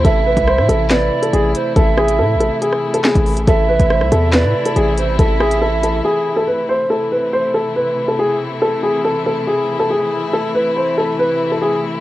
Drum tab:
HH |x--x--x-x--xx-x-|x--x--x-x--x-xox|x--x--x-x--xx-x-|x--x--x---------|
CP |--------x-------|------------x---|--------x-------|----------------|
SD |----rr--o-------|--r------r--o---|----rr--o-------|--r-------------|
BD |o--o------------|o------------o--|o--o------------|o---------------|

HH |----------------|----------------|----------------|
CP |----------------|----------------|----------------|
SD |----------------|----------------|----------------|
BD |----------------|----------------|----------------|